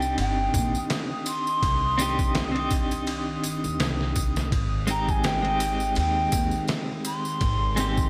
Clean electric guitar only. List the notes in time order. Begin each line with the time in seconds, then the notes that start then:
Already playing: C4 D4 D#4 G4
1.98 C4 D4 D#4 G4
2.52 C4 D4
2.57 D#4 G4
4.87 G#3 C4 D#4 G4
5.42 G#3 C4
5.47 D#4 G4
7.76 G#3 C4 D#4 G4